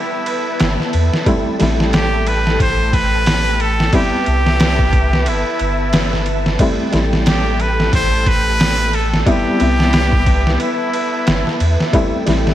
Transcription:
0.00 1.22 G3 medium
0.00 1.23 B3 medium
0.00 1.24 C4 medium
0.00 0.89 E4 medium
0.00 1.24 E4 medium
0.00 1.23 B4 medium
0.00 1.23 E5 medium
0.00 11.89 A5 medium
0.26 ride medium
0.60 0.77 G1 medium
0.60 snare loud
0.60 ride medium
0.80 snare soft
0.93 1.10 E2 medium
0.93 ride medium
1.14 snare medium
1.26 1.46 G3 medium
1.26 1.46 A3 medium
1.26 1.46 C4 medium
1.26 1.47 E4 loud
1.26 3.90 A4 medium
1.26 3.90 G5 medium
1.26 kick loud
1.26 ride medium
1.59 2.58 A1 loud
1.59 3.89 G3 medium
1.59 3.90 A3 medium
1.59 3.90 C4 medium
1.59 3.91 E4 medium
1.59 snare medium
1.59 ride medium
1.80 snare medium
1.93 2.29 G4 loud
1.93 snare loud
1.93 ride medium
2.27 2.60 B4 medium
2.27 ride medium
2.47 snare soft
2.60 3.91 A1 medium
2.60 2.96 C5 loud
2.60 kick loud
2.60 ride medium
2.93 3.63 B4 loud
2.93 kick medium
2.93 ride medium
3.26 snare loud
3.26 open hi-hat medium
3.60 3.96 A4 loud
3.60 ride medium
3.80 snare medium
3.93 4.13 G3 medium
3.93 4.13 B3 medium
3.93 4.13 C4 medium
3.93 4.13 E4 medium
3.93 5.30 G4 loud
3.93 6.57 B4 medium
3.93 6.57 E5 medium
3.93 kick loud
3.93 ride medium
4.26 5.28 C2 loud
4.26 ride medium
4.46 snare medium
4.60 snare loud
4.60 ride medium
4.79 kick medium
4.93 kick medium
4.93 ride medium
5.13 snare medium
5.26 5.44 G1 medium
5.26 6.27 E4 medium
5.26 ride medium
5.59 6.57 G1 loud
5.59 ride medium
5.93 snare loud
5.93 ride medium
6.13 snare soft
6.26 ride medium
6.46 snare medium
6.58 6.79 G3 medium
6.58 6.80 A3 medium
6.58 6.80 C4 medium
6.58 6.80 E4 loud
6.58 9.23 A4 medium
6.58 9.23 G5 medium
6.58 kick loud
6.58 ride medium
6.92 7.90 A1 loud
6.92 9.22 G3 medium
6.92 9.23 A3 medium
6.92 9.23 C4 medium
6.92 9.24 E4 medium
6.92 snare medium
6.92 ride medium
7.13 snare medium
7.26 7.63 G4 medium
7.26 snare loud
7.26 ride medium
7.60 7.94 B4 loud
7.60 ride medium
7.80 snare soft
7.93 9.24 A1 medium
7.93 8.30 C5 loud
7.93 kick loud
7.93 ride medium
8.26 8.96 B4 loud
8.26 kick medium
8.26 ride medium
8.60 snare loud
8.60 open hi-hat medium
8.93 9.23 A4 loud
8.93 ride medium
9.14 snare medium
9.23 9.56 G3 loud
9.23 9.56 B3 loud
9.23 9.30 A4 medium
9.23 11.90 B4 medium
9.23 11.90 E5 medium
9.23 kick loud
9.23 ride medium
9.27 9.57 C4 medium
9.27 9.57 E4 loud
9.27 10.61 G4 loud
9.59 10.57 C2 loud
9.59 11.89 G3 medium
9.59 11.90 B3 medium
9.59 11.90 C4 medium
9.59 11.91 E4 medium
9.59 ride medium
9.80 snare medium
9.93 snare loud
9.93 ride medium
10.12 kick medium
10.26 kick medium
10.26 ride medium
10.47 snare medium
10.60 11.56 E4 medium
10.60 ride medium
10.93 ride medium
11.27 11.44 G1 medium
11.27 snare loud
11.27 ride medium
11.47 snare soft
11.60 11.77 E2 loud
11.60 ride medium
11.80 snare medium
11.93 12.12 G3 loud
11.93 12.13 A3 medium
11.93 12.13 C4 medium
11.93 12.13 E4 loud
11.93 12.54 A4 medium
11.93 12.54 G5 medium
11.93 12.54 A5 medium
11.93 kick loud
11.93 ride medium
12.26 12.54 A1 loud
12.26 12.54 G3 medium
12.26 12.54 A3 medium
12.26 12.54 C4 medium
12.26 12.54 E4 medium
12.26 snare medium
12.26 ride medium
12.47 snare medium

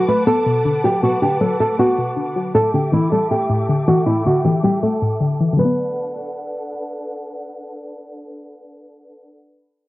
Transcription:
0.00 0.45 B2 medium
0.00 0.64 D3 medium
0.00 0.83 F#3 medium
0.00 2.52 B4 medium
0.00 2.52 F#5 medium
0.00 2.52 A5 medium
0.00 2.51 D6 medium
0.08 1.03 A3 medium
0.08 0.23 B4 medium
0.27 1.22 B3 medium
0.27 0.80 A4 medium
0.46 1.01 B2 medium
0.65 1.21 D3 medium
0.84 1.40 F#3 medium
0.84 0.99 G4 medium
1.03 1.97 B2 medium
1.03 1.18 F#4 loud
1.22 2.15 D3 medium
1.22 1.37 G4 medium
1.41 2.35 F#3 medium
1.41 1.56 A4 medium
1.60 2.55 A3 medium
1.60 1.75 A4 medium
1.79 2.55 B3 loud
1.79 2.51 F#4 medium
1.98 2.55 B2 medium
2.17 2.55 D3 medium
2.36 2.55 F#3 medium
2.55 3.48 A2 loud
2.55 2.70 A4 loud
2.55 5.56 A4 medium
2.55 5.56 E5 medium
2.55 5.56 G5 medium
2.55 5.56 D6 medium
2.74 3.68 D3 medium
2.74 2.89 G4 medium
2.92 3.87 E3 medium
2.92 3.08 E4 medium
3.12 4.07 G3 medium
3.12 3.27 A4 medium
3.31 4.26 A3 loud
3.31 3.84 G4 medium
3.50 4.05 A2 medium
3.69 4.24 D3 medium
3.88 4.44 E3 medium
3.88 4.03 F#4 medium
4.06 5.01 A2 loud
4.06 4.21 E4 loud
4.25 5.19 D3 medium
4.25 4.41 F#4 medium
4.45 5.39 E3 medium
4.45 4.60 G4 medium
4.63 5.59 G3 medium
4.63 4.79 G4 medium
4.83 5.59 A3 loud
4.83 5.55 A4 medium
5.02 5.59 A2 medium
5.20 5.52 D3 medium
5.40 5.59 E3 medium
5.53 9.24 D3 medium
5.57 9.28 F#3 medium
5.57 9.32 A3 medium
5.57 9.30 D4 medium
5.57 9.30 A4 medium
5.57 6.69 B4 medium
5.57 9.30 B4 medium
5.57 9.30 F#5 medium
5.65 9.36 B3 medium

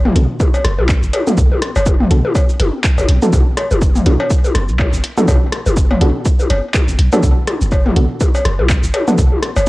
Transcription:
0.00 0.12 F#1 medium
0.05 mid tom loud
0.05 high tom soft
0.16 0.26 B1 medium
0.16 0.24 B3 medium
0.16 0.24 D4 medium
0.16 0.24 F#4 medium
0.16 0.24 A4 medium
0.16 closed hi-hat loud
0.40 kick loud
0.40 high tom soft
0.40 cabasa medium
0.54 cowbell medium
0.54 cabasa soft
0.65 0.80 F#1 loud
0.65 cross-stick medium
0.65 closed hi-hat medium
0.79 0.96 B1 loud
0.79 high tom soft
0.89 kick loud
0.89 clap loud
0.89 cabasa medium
1.03 1.11 F#1 medium
1.03 cabasa soft
1.13 closed hi-hat medium
1.13 high tom soft
1.13 cowbell medium
1.27 1.33 B3 medium
1.27 1.33 D4 medium
1.27 1.33 F#4 medium
1.27 1.33 A4 loud
1.27 mid tom medium
1.27 cabasa soft
1.38 1.48 B1 loud
1.38 kick loud
1.38 cabasa medium
1.52 high tom soft
1.62 cross-stick medium
1.62 closed hi-hat medium
1.76 2.07 F#1 medium
1.76 cowbell medium
1.76 cabasa soft
1.86 kick loud
1.86 high tom soft
1.86 cabasa medium
2.00 mid tom loud
2.11 2.21 B1 loud
2.11 2.19 B3 medium
2.11 2.19 D4 medium
2.11 2.19 F#4 medium
2.11 2.19 A4 medium
2.11 closed hi-hat loud
2.25 high tom soft
2.35 kick loud
2.35 cowbell medium
2.35 cabasa medium
2.49 cabasa soft
2.60 2.70 F#1 loud
2.60 closed hi-hat loud
2.60 high tom soft
2.84 kick loud
2.84 clap loud
2.84 cabasa medium
2.98 3.06 F#1 medium
2.98 high tom soft
2.98 cowbell medium
2.98 cabasa soft
3.08 3.19 B1 loud
3.08 closed hi-hat loud
3.22 3.28 B3 medium
3.22 3.28 D4 medium
3.22 3.28 F#4 medium
3.22 3.28 A4 loud
3.22 mid tom medium
3.22 cabasa soft
3.33 3.43 B1 loud
3.33 kick loud
3.33 high tom soft
3.33 cabasa medium
3.57 cross-stick medium
3.57 closed hi-hat medium
3.57 cowbell medium
3.71 4.02 F#1 medium
3.71 high tom soft
3.71 cabasa soft
3.82 kick loud
3.82 cabasa medium
3.95 mid tom medium
3.95 cabasa soft
4.06 4.16 B1 loud
4.06 4.14 B3 medium
4.06 4.14 D4 medium
4.06 4.14 F#4 medium
4.06 4.14 A4 medium
4.06 closed hi-hat medium
4.06 high tom soft
4.20 cowbell medium
4.30 kick loud
4.30 cabasa medium
4.44 high tom soft
4.44 cabasa soft
4.55 4.70 F#1 medium
4.55 cross-stick medium
4.55 closed hi-hat loud
4.69 4.86 B1 loud
4.69 cabasa soft
4.79 kick loud
4.79 clap loud
4.79 high tom soft
4.79 cowbell medium
4.79 cabasa medium
4.93 5.01 F#1 loud
4.93 cabasa soft
5.04 closed hi-hat medium
5.18 5.23 B3 loud
5.18 5.23 D4 medium
5.18 5.23 F#4 medium
5.18 5.23 A4 loud
5.18 mid tom medium
5.18 high tom soft
5.18 cabasa soft
5.28 5.38 B1 loud
5.28 kick loud
5.28 high tom soft
5.28 cowbell medium
5.28 cabasa medium
5.52 cross-stick medium
5.52 closed hi-hat medium
5.66 5.97 F#1 medium
5.66 high tom soft
5.66 cabasa soft
5.77 kick loud
5.77 cabasa medium
5.91 mid tom medium
5.91 cowbell medium
6.01 6.12 B1 loud
6.01 6.09 B3 medium
6.01 6.09 D4 medium
6.01 6.09 F#4 medium
6.01 6.09 A4 medium
6.01 closed hi-hat medium
6.01 high tom soft
6.26 kick loud
6.26 cabasa medium
6.39 high tom soft
6.39 cabasa soft
6.50 6.60 F#1 loud
6.50 closed hi-hat medium
6.50 cowbell medium
6.74 kick loud
6.74 clap loud
6.74 high tom soft
6.74 cabasa medium
6.88 6.96 F#1 medium
6.88 cabasa soft
6.99 7.09 B1 loud
6.99 closed hi-hat medium
7.13 7.19 B3 medium
7.13 7.19 D4 medium
7.13 7.19 F#4 medium
7.13 7.19 A4 loud
7.13 mid tom medium
7.13 high tom soft
7.13 cowbell medium
7.13 cabasa soft
7.23 7.34 B1 loud
7.23 kick loud
7.23 cabasa medium
7.47 cross-stick medium
7.47 closed hi-hat medium
7.47 high tom soft
7.61 7.92 F#1 medium
7.61 cabasa soft
7.72 kick loud
7.72 cowbell medium
7.72 cabasa medium
7.86 mid tom medium
7.86 high tom soft
7.96 8.07 B1 medium
7.96 8.04 B3 medium
7.96 8.04 D4 medium
7.96 8.04 F#4 medium
7.96 8.04 A4 medium
7.96 closed hi-hat medium
8.21 kick loud
8.21 high tom soft
8.21 cabasa medium
8.35 cowbell medium
8.35 cabasa soft
8.45 8.61 F#1 loud
8.45 cross-stick medium
8.45 closed hi-hat medium
8.59 8.76 B1 loud
8.59 high tom soft
8.69 kick loud
8.69 clap loud
8.69 cabasa medium
8.83 8.91 F#1 medium
8.83 cabasa soft
8.94 closed hi-hat medium
8.94 high tom soft
8.94 cowbell medium
9.08 9.14 B3 loud
9.08 9.14 D4 medium
9.08 9.14 F#4 medium
9.08 9.14 A4 loud
9.08 mid tom medium
9.08 cabasa soft
9.18 9.29 B1 loud
9.18 kick loud
9.18 cabasa medium
9.32 high tom soft
9.43 cross-stick medium
9.43 closed hi-hat medium
9.56 9.69 F#1 medium
9.56 cowbell medium
9.56 cabasa soft

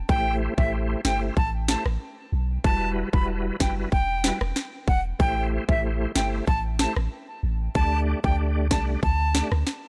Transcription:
0.09 0.48 A1 loud
0.09 0.54 A3 medium
0.09 0.54 E4 medium
0.09 0.54 G4 medium
0.09 0.54 C5 loud
0.09 0.34 G5 loud
0.09 kick loud
0.57 0.96 A1 loud
0.57 1.01 A3 medium
0.57 1.01 E4 medium
0.57 1.01 G4 medium
0.57 1.01 C5 medium
0.57 0.69 E5 medium
0.57 kick medium
1.05 1.31 G1 medium
1.05 1.34 A3 medium
1.05 1.34 E4 medium
1.05 1.35 G4 medium
1.05 1.35 C5 medium
1.05 1.18 G5 medium
1.05 snare loud
1.37 1.76 A1 loud
1.37 1.50 A5 medium
1.37 kick medium
1.68 1.84 A3 medium
1.68 1.84 E4 medium
1.68 1.84 G4 medium
1.68 1.84 C5 medium
1.68 1.82 A5 medium
1.68 snare loud
1.86 1.98 A1 medium
1.86 cross-stick medium
2.32 2.58 B1 medium
2.64 3.04 E1 loud
2.64 3.09 G3 medium
2.64 3.09 E4 medium
2.64 3.09 F#4 medium
2.64 3.09 B4 loud
2.64 2.89 A5 loud
2.64 kick loud
3.13 3.51 E1 loud
3.13 3.56 G3 medium
3.13 3.56 E4 medium
3.13 3.57 F#4 medium
3.13 3.57 B4 medium
3.13 3.25 B5 medium
3.13 kick medium
3.60 3.86 F#1 loud
3.60 3.89 G3 medium
3.60 3.90 E4 medium
3.60 3.90 F#4 medium
3.60 3.90 B4 medium
3.60 3.73 G5 medium
3.60 kick medium
3.60 snare loud
3.92 4.31 E1 loud
3.92 4.38 G5 medium
3.92 kick medium
4.24 4.39 G3 medium
4.24 4.39 E4 medium
4.24 4.39 F#4 medium
4.24 4.39 B4 medium
4.24 snare loud
4.41 4.53 E1 medium
4.41 cross-stick loud
4.56 snare medium
4.88 5.13 E1 medium
4.88 5.01 F#5 medium
4.88 kick medium
5.19 5.59 A1 loud
5.19 5.64 A3 medium
5.19 5.64 E4 medium
5.19 5.64 G4 medium
5.19 5.65 C5 loud
5.19 5.44 G5 loud
5.19 kick loud
5.68 6.06 A1 loud
5.68 6.12 A3 medium
5.68 6.12 E4 medium
5.68 6.12 G4 medium
5.68 6.12 C5 medium
5.68 5.80 E5 medium
5.68 kick medium
6.15 6.41 G1 medium
6.15 6.45 A3 medium
6.15 6.45 E4 medium
6.15 6.45 G4 medium
6.15 6.45 C5 medium
6.15 6.28 G5 medium
6.15 snare loud
6.47 6.87 A1 loud
6.47 6.60 A5 medium
6.47 kick medium
6.79 6.95 A3 medium
6.79 6.95 E4 medium
6.79 6.95 G4 medium
6.79 6.95 C5 medium
6.79 6.92 A5 medium
6.79 snare loud
6.96 7.08 A1 medium
6.96 cross-stick medium
7.43 7.69 A1 medium
7.75 8.14 D2 loud
7.75 8.20 A3 medium
7.75 8.20 D4 medium
7.75 8.20 G4 medium
7.75 8.20 D5 loud
7.75 8.00 A5 loud
7.75 kick loud
8.24 8.73 D2 loud
8.24 8.67 A3 medium
8.24 8.67 D4 medium
8.24 8.67 G4 medium
8.24 8.68 D5 medium
8.24 8.35 G5 medium
8.24 kick medium
8.71 8.97 C2 medium
8.71 9.00 A3 medium
8.71 9.00 D4 medium
8.71 9.00 G4 medium
8.71 9.01 D5 medium
8.71 8.84 A5 medium
8.71 kick medium
8.71 snare loud
9.03 9.42 D2 loud
9.03 9.49 A5 medium
9.03 kick medium
9.35 9.50 A3 medium
9.35 9.50 D4 medium
9.35 9.50 G4 medium
9.35 9.50 D5 medium
9.35 snare loud
9.52 9.64 D2 medium
9.52 cross-stick medium
9.67 snare medium

